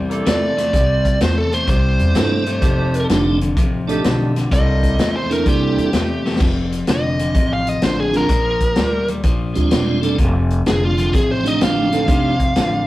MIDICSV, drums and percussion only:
0, 0, Header, 1, 2, 480
1, 0, Start_track
1, 0, Tempo, 472813
1, 743, Time_signature, 4, 2, 24, 8
1, 13065, End_track
2, 0, Start_track
2, 0, Title_t, "Drums"
2, 109, Note_on_c, 9, 42, 54
2, 211, Note_off_c, 9, 42, 0
2, 267, Note_on_c, 9, 42, 87
2, 272, Note_on_c, 9, 38, 106
2, 368, Note_off_c, 9, 42, 0
2, 373, Note_off_c, 9, 38, 0
2, 592, Note_on_c, 9, 42, 60
2, 597, Note_on_c, 9, 38, 31
2, 693, Note_off_c, 9, 42, 0
2, 698, Note_off_c, 9, 38, 0
2, 744, Note_on_c, 9, 36, 101
2, 747, Note_on_c, 9, 42, 75
2, 846, Note_off_c, 9, 36, 0
2, 849, Note_off_c, 9, 42, 0
2, 1065, Note_on_c, 9, 36, 75
2, 1066, Note_on_c, 9, 42, 57
2, 1166, Note_off_c, 9, 36, 0
2, 1168, Note_off_c, 9, 42, 0
2, 1224, Note_on_c, 9, 42, 77
2, 1229, Note_on_c, 9, 38, 106
2, 1325, Note_off_c, 9, 42, 0
2, 1330, Note_off_c, 9, 38, 0
2, 1546, Note_on_c, 9, 42, 55
2, 1647, Note_off_c, 9, 42, 0
2, 1700, Note_on_c, 9, 42, 66
2, 1701, Note_on_c, 9, 36, 103
2, 1802, Note_off_c, 9, 42, 0
2, 1803, Note_off_c, 9, 36, 0
2, 2024, Note_on_c, 9, 42, 51
2, 2125, Note_off_c, 9, 42, 0
2, 2181, Note_on_c, 9, 42, 77
2, 2186, Note_on_c, 9, 38, 109
2, 2283, Note_off_c, 9, 42, 0
2, 2288, Note_off_c, 9, 38, 0
2, 2500, Note_on_c, 9, 42, 55
2, 2602, Note_off_c, 9, 42, 0
2, 2658, Note_on_c, 9, 42, 76
2, 2659, Note_on_c, 9, 36, 104
2, 2760, Note_off_c, 9, 42, 0
2, 2761, Note_off_c, 9, 36, 0
2, 2983, Note_on_c, 9, 42, 57
2, 3085, Note_off_c, 9, 42, 0
2, 3141, Note_on_c, 9, 42, 79
2, 3146, Note_on_c, 9, 38, 96
2, 3242, Note_off_c, 9, 42, 0
2, 3247, Note_off_c, 9, 38, 0
2, 3463, Note_on_c, 9, 42, 64
2, 3565, Note_off_c, 9, 42, 0
2, 3622, Note_on_c, 9, 36, 99
2, 3624, Note_on_c, 9, 42, 79
2, 3724, Note_off_c, 9, 36, 0
2, 3725, Note_off_c, 9, 42, 0
2, 3950, Note_on_c, 9, 42, 60
2, 4051, Note_off_c, 9, 42, 0
2, 4103, Note_on_c, 9, 42, 77
2, 4108, Note_on_c, 9, 38, 102
2, 4205, Note_off_c, 9, 42, 0
2, 4210, Note_off_c, 9, 38, 0
2, 4427, Note_on_c, 9, 42, 56
2, 4432, Note_on_c, 9, 38, 31
2, 4529, Note_off_c, 9, 42, 0
2, 4534, Note_off_c, 9, 38, 0
2, 4584, Note_on_c, 9, 36, 112
2, 4588, Note_on_c, 9, 42, 82
2, 4685, Note_off_c, 9, 36, 0
2, 4689, Note_off_c, 9, 42, 0
2, 4904, Note_on_c, 9, 36, 66
2, 4906, Note_on_c, 9, 42, 57
2, 5006, Note_off_c, 9, 36, 0
2, 5008, Note_off_c, 9, 42, 0
2, 5065, Note_on_c, 9, 42, 75
2, 5070, Note_on_c, 9, 38, 95
2, 5166, Note_off_c, 9, 42, 0
2, 5171, Note_off_c, 9, 38, 0
2, 5389, Note_on_c, 9, 42, 59
2, 5490, Note_off_c, 9, 42, 0
2, 5542, Note_on_c, 9, 42, 71
2, 5543, Note_on_c, 9, 36, 101
2, 5643, Note_off_c, 9, 42, 0
2, 5644, Note_off_c, 9, 36, 0
2, 5870, Note_on_c, 9, 42, 57
2, 5972, Note_off_c, 9, 42, 0
2, 6019, Note_on_c, 9, 42, 76
2, 6024, Note_on_c, 9, 38, 103
2, 6120, Note_off_c, 9, 42, 0
2, 6125, Note_off_c, 9, 38, 0
2, 6350, Note_on_c, 9, 38, 58
2, 6452, Note_off_c, 9, 38, 0
2, 6456, Note_on_c, 9, 38, 72
2, 6501, Note_on_c, 9, 36, 102
2, 6502, Note_on_c, 9, 49, 91
2, 6557, Note_off_c, 9, 38, 0
2, 6602, Note_off_c, 9, 36, 0
2, 6603, Note_off_c, 9, 49, 0
2, 6826, Note_on_c, 9, 42, 56
2, 6927, Note_off_c, 9, 42, 0
2, 6975, Note_on_c, 9, 42, 79
2, 6980, Note_on_c, 9, 38, 108
2, 7077, Note_off_c, 9, 42, 0
2, 7082, Note_off_c, 9, 38, 0
2, 7302, Note_on_c, 9, 42, 61
2, 7403, Note_off_c, 9, 42, 0
2, 7459, Note_on_c, 9, 36, 97
2, 7459, Note_on_c, 9, 42, 80
2, 7561, Note_off_c, 9, 36, 0
2, 7561, Note_off_c, 9, 42, 0
2, 7784, Note_on_c, 9, 42, 61
2, 7885, Note_off_c, 9, 42, 0
2, 7935, Note_on_c, 9, 42, 78
2, 7940, Note_on_c, 9, 38, 93
2, 8036, Note_off_c, 9, 42, 0
2, 8042, Note_off_c, 9, 38, 0
2, 8259, Note_on_c, 9, 42, 56
2, 8264, Note_on_c, 9, 38, 30
2, 8361, Note_off_c, 9, 42, 0
2, 8366, Note_off_c, 9, 38, 0
2, 8416, Note_on_c, 9, 42, 81
2, 8417, Note_on_c, 9, 36, 98
2, 8518, Note_off_c, 9, 42, 0
2, 8519, Note_off_c, 9, 36, 0
2, 8735, Note_on_c, 9, 42, 55
2, 8738, Note_on_c, 9, 36, 72
2, 8836, Note_off_c, 9, 42, 0
2, 8840, Note_off_c, 9, 36, 0
2, 8889, Note_on_c, 9, 42, 71
2, 8894, Note_on_c, 9, 38, 101
2, 8990, Note_off_c, 9, 42, 0
2, 8995, Note_off_c, 9, 38, 0
2, 9220, Note_on_c, 9, 42, 60
2, 9322, Note_off_c, 9, 42, 0
2, 9374, Note_on_c, 9, 42, 74
2, 9378, Note_on_c, 9, 36, 94
2, 9475, Note_off_c, 9, 42, 0
2, 9480, Note_off_c, 9, 36, 0
2, 9697, Note_on_c, 9, 42, 49
2, 9799, Note_off_c, 9, 42, 0
2, 9857, Note_on_c, 9, 42, 80
2, 9862, Note_on_c, 9, 38, 101
2, 9959, Note_off_c, 9, 42, 0
2, 9964, Note_off_c, 9, 38, 0
2, 10182, Note_on_c, 9, 42, 59
2, 10283, Note_off_c, 9, 42, 0
2, 10340, Note_on_c, 9, 36, 99
2, 10340, Note_on_c, 9, 42, 81
2, 10441, Note_off_c, 9, 36, 0
2, 10441, Note_off_c, 9, 42, 0
2, 10663, Note_on_c, 9, 42, 56
2, 10765, Note_off_c, 9, 42, 0
2, 10823, Note_on_c, 9, 42, 78
2, 10828, Note_on_c, 9, 38, 98
2, 10924, Note_off_c, 9, 42, 0
2, 10929, Note_off_c, 9, 38, 0
2, 11146, Note_on_c, 9, 42, 59
2, 11248, Note_off_c, 9, 42, 0
2, 11303, Note_on_c, 9, 36, 101
2, 11306, Note_on_c, 9, 42, 76
2, 11404, Note_off_c, 9, 36, 0
2, 11408, Note_off_c, 9, 42, 0
2, 11631, Note_on_c, 9, 42, 57
2, 11732, Note_off_c, 9, 42, 0
2, 11786, Note_on_c, 9, 42, 88
2, 11792, Note_on_c, 9, 38, 106
2, 11888, Note_off_c, 9, 42, 0
2, 11893, Note_off_c, 9, 38, 0
2, 12105, Note_on_c, 9, 42, 63
2, 12110, Note_on_c, 9, 38, 33
2, 12207, Note_off_c, 9, 42, 0
2, 12212, Note_off_c, 9, 38, 0
2, 12262, Note_on_c, 9, 36, 112
2, 12263, Note_on_c, 9, 42, 88
2, 12364, Note_off_c, 9, 36, 0
2, 12364, Note_off_c, 9, 42, 0
2, 12585, Note_on_c, 9, 36, 74
2, 12587, Note_on_c, 9, 42, 59
2, 12686, Note_off_c, 9, 36, 0
2, 12688, Note_off_c, 9, 42, 0
2, 12748, Note_on_c, 9, 42, 81
2, 12753, Note_on_c, 9, 38, 96
2, 12849, Note_off_c, 9, 42, 0
2, 12854, Note_off_c, 9, 38, 0
2, 13065, End_track
0, 0, End_of_file